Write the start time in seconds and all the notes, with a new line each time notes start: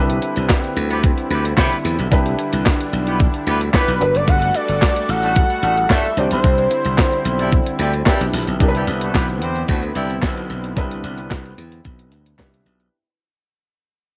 Already playing: C2 D3 G3 C4 D4 E4 G4 B4
0.10 closed hi-hat
0.22 closed hi-hat
0.36 C2, closed hi-hat
0.49 kick, snare, clap, closed hi-hat
0.64 closed hi-hat
0.76 D2, closed hi-hat
0.91 B3 E4 G4 B4, closed hi-hat
1.04 kick, closed hi-hat
1.18 closed hi-hat
1.30 D2 B3 E4 G4 B4, closed hi-hat
1.45 closed hi-hat
1.58 C3 B3 E4 G4 B4, kick, snare, clap, closed hi-hat
1.72 closed hi-hat
1.85 E2, closed hi-hat
1.99 B1, closed hi-hat
2.11 C2 D4 E4 G4 B4, kick, closed hi-hat
2.26 closed hi-hat
2.39 closed hi-hat
2.53 C2, closed hi-hat
2.66 kick, snare, clap, closed hi-hat
2.80 closed hi-hat
2.93 B1, closed hi-hat
3.07 B3 E4 G4 B4, closed hi-hat
3.20 kick, closed hi-hat
3.34 closed hi-hat
3.47 D2 B3 E4 G4 B4, closed hi-hat
3.61 closed hi-hat
3.74 B3 E4 G4 B4, kick, snare, clap, closed hi-hat
3.88 B1, closed hi-hat
4.00 G1 A3 D4 F#4 A4 B4, closed hi-hat
4.15 F#1 D5, closed hi-hat
4.28 G1 F#5, kick, closed hi-hat
4.42 closed hi-hat
4.55 D5, closed hi-hat
4.68 G1, closed hi-hat
4.82 kick, snare, clap, closed hi-hat
4.96 closed hi-hat
5.09 A1 F#5, closed hi-hat
5.23 A3 D4 F#4 A4, closed hi-hat
5.36 F#5, kick, closed hi-hat
5.50 closed hi-hat
5.63 A1 A3 D4 F#4 A4, closed hi-hat
5.77 closed hi-hat
5.90 G2 A3 D4 F#4 A4 E5, kick, snare, clap, closed hi-hat
6.05 closed hi-hat
6.16 C2 D3 C4 D4 E4 G4 C5 D5, closed hi-hat
6.31 B1 C5, closed hi-hat
6.44 C2, kick, closed hi-hat
6.58 closed hi-hat
6.71 closed hi-hat
6.85 C2, closed hi-hat
6.98 kick, snare, clap, closed hi-hat
7.12 closed hi-hat
7.25 B1, closed hi-hat
7.39 G3 D4 E4 G4, closed hi-hat
7.52 kick, closed hi-hat
7.66 closed hi-hat
7.79 D2 G3 D4 E4 G4, closed hi-hat
7.93 closed hi-hat
8.06 G3 D4 D#4 E4 G4 B4, kick, snare, clap, closed hi-hat
8.13 E4
8.21 B1, closed hi-hat
8.33 A#1, open hi-hat
8.47 B1, closed hi-hat
8.60 C2 D3 B3 C4 D4 E4 G4 A#4, kick, closed hi-hat
8.68 B4
8.75 G3 D4 E4 G4, closed hi-hat
8.87 C2, closed hi-hat
9.01 A3 D4 F#4 A4, closed hi-hat
9.14 B1 B3 E4 G4 B4, kick, snare, clap, closed hi-hat
9.29 closed hi-hat
9.41 E2 C4 E4 G4 C5, closed hi-hat
9.56 closed hi-hat
9.68 D2 A3 D4 F#4 A4, kick, closed hi-hat
9.83 closed hi-hat
9.95 C2 G3 D4 E4 G4, closed hi-hat
10.10 closed hi-hat
10.22 B1, kick, snare, clap, closed hi-hat
10.37 closed hi-hat
10.50 B1, closed hi-hat
10.64 closed hi-hat
10.76 C2 D4 E4 G4 B4, kick, closed hi-hat
10.91 closed hi-hat
11.04 C2, closed hi-hat
11.18 closed hi-hat
11.31 C2, kick, snare, clap, closed hi-hat
11.45 closed hi-hat
11.58 E2, closed hi-hat
11.72 closed hi-hat
11.85 B1, kick, closed hi-hat
11.99 closed hi-hat
12.12 D2, closed hi-hat
12.26 closed hi-hat
12.39 C2 D4 D#4 G4 B4, kick, snare, clap, closed hi-hat
12.46 E4
12.54 closed hi-hat
12.66 B1, closed hi-hat
12.80 closed hi-hat